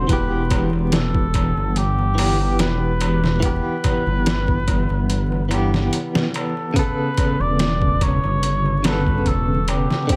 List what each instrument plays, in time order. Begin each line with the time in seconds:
Already playing: muted trumpet C5
0.07 detuned saw bass E1, clean electric guitar E3 B3, muted trumpet B4, kick, closed hi-hat, darbuka tek
0.13 clean electric guitar G4
0.50 kick, closed hi-hat, darbuka tek
0.73 darbuka tek
0.92 muted trumpet A4, snare, closed hi-hat, darbuka tek
1.15 kick
1.34 kick, closed hi-hat, darbuka tek
1.57 detuned saw bass G1, darbuka tek
1.76 muted trumpet G4, closed hi-hat, darbuka tek
1.99 darbuka tek
2.15 clean electric guitar E3 B3, open hi-hat
2.19 clean electric guitar G4, darbuka tek
2.41 darbuka tek
2.59 detuned saw bass E1, muted trumpet B4, snare, closed hi-hat, darbuka tek
3.01 closed hi-hat, darbuka tek
3.24 snare, darbuka tek, darbuka dum
3.40 clean electric guitar E3 B3, muted trumpet B4, kick, closed hi-hat, darbuka tek
3.46 clean electric guitar G4
3.84 kick, closed hi-hat, darbuka tek, darbuka dum
4.07 detuned saw bass G1, darbuka tek
4.26 snare, closed hi-hat, darbuka tek
4.47 kick, darbuka tek
4.68 kick, closed hi-hat, darbuka tek
4.90 detuned saw bass G1, darbuka tek
5.10 closed hi-hat, darbuka tek
5.32 darbuka tek
5.49 clean electric guitar E3 B3, closed hi-hat, darbuka tek
5.54 clean electric guitar G4
5.74 snare, darbuka tek, darbuka dum
5.93 closed hi-hat, darbuka tek
6.15 snare, darbuka dum
6.34 muted trumpet A4, closed hi-hat, darbuka tek
6.57 darbuka tek
6.74 clean electric guitar C#3 B3, muted trumpet B4, kick, closed hi-hat, darbuka tek
6.79 clean electric guitar A4
7.17 kick, closed hi-hat, darbuka tek
7.40 detuned saw bass E1, muted trumpet D5, darbuka tek
7.59 snare, closed hi-hat, darbuka tek
7.82 kick
8.01 muted trumpet C#5, kick, closed hi-hat, darbuka tek
8.24 detuned saw bass G1, darbuka tek
8.43 closed hi-hat, darbuka tek
8.66 darbuka tek
8.83 clean electric guitar C#3 B3, muted trumpet B4, snare, closed hi-hat, darbuka tek
8.89 clean electric guitar A4
9.07 kick, darbuka tek
9.26 detuned saw bass E1, muted trumpet A4, kick, closed hi-hat, darbuka tek
9.68 muted trumpet G4, closed hi-hat, darbuka tek
9.90 snare, darbuka tek, darbuka dum
10.07 clean electric guitar D3 C4, kick, closed hi-hat, darbuka tek
10.13 clean electric guitar G4